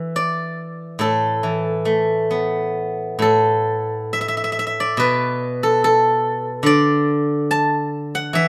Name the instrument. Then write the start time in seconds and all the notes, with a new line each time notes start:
guzheng
Already playing: E3 E5
0.16 D5
0.99 A2 A4
1.43 E3
1.85 A3
2.31 B3
3.19 A2 A4
4.13 E5
4.21 E5
4.28 E5
4.37 E5
4.44 E5
4.52 E5
4.59 E5
4.67 E5
4.80 D5
4.97 B2 B4
5.63 A4
5.84 A4
6.63 D3 D5
7.51 A5
8.15 F#5
8.33 E3 E5